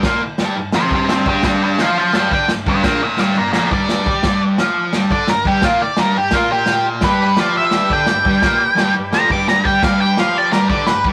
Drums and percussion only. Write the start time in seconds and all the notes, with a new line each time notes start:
0.03 kick, snare, crash
0.38 snare, crash
0.72 snare, crash
0.91 kick
1.09 snare, crash
1.26 kick
1.43 kick, snare, crash
1.78 snare, crash
2.13 snare, crash
2.31 kick
2.48 snare, crash
2.66 kick
2.84 kick, snare, crash
3.18 snare, crash
3.53 snare, crash
3.71 kick
3.89 snare, crash
4.06 kick
4.23 kick, snare, crash
4.58 snare, crash
4.93 snare, crash
5.11 kick
5.28 snare, crash
5.45 kick
5.62 kick, snare, crash
5.97 snare, crash
6.31 kick, snare, crash
6.66 snare, crash
7.01 kick, snare, crash
7.37 snare, crash
7.71 snare, crash
7.90 kick
8.06 snare, crash
8.25 kick
8.42 kick, snare, crash
8.78 snare, crash
9.13 snare, crash
9.30 kick
9.48 snare, crash
9.65 kick
9.83 kick, snare, crash
10.17 snare, crash
10.52 snare, crash
10.70 kick
10.87 snare, crash
11.04 kick